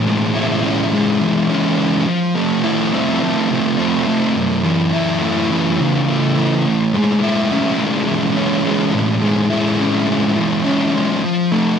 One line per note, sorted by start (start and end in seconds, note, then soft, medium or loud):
0.00 1.21 A2 medium
0.00 1.20 E3 medium
0.00 0.61 C#4 medium
0.00 0.34 E4 medium
0.06 0.91 G#3 medium
0.34 2.08 E4 medium
0.63 1.49 C#4 medium
0.93 1.76 G#3 medium
1.20 2.05 E3 medium
1.50 2.07 C#4 medium
1.77 2.06 G#3 medium
2.05 3.49 F3 medium
2.35 3.21 A3 medium
2.64 4.39 E4 medium
2.93 3.77 C4 medium
3.22 4.06 A3 medium
3.50 4.36 F3 medium
3.78 4.36 C4 medium
4.07 4.64 A3 medium
4.36 5.79 F#2 medium
4.64 5.50 E3 medium
4.93 7.22 E4 medium
5.22 6.07 A3 medium
5.51 6.37 E3 medium
5.80 6.66 C#3 medium
6.08 6.97 A3 medium
6.37 6.94 E3 medium
6.66 8.09 A2 medium
6.94 7.77 G#3 medium
7.22 9.50 E4 medium
7.51 8.35 C#4 medium
7.79 8.64 G#3 medium
8.08 10.36 E3 medium
8.36 9.78 C#4 medium
8.65 9.21 G#3 medium
8.94 10.37 A2 medium
9.22 10.06 G#3 medium
9.50 11.26 E4 medium
9.79 10.64 C#4 medium
10.08 10.93 G#3 medium
10.37 11.23 E3 medium
10.65 11.23 C#4 medium
10.94 11.23 G#3 medium
11.23 11.79 F3 medium
11.52 11.79 A3 medium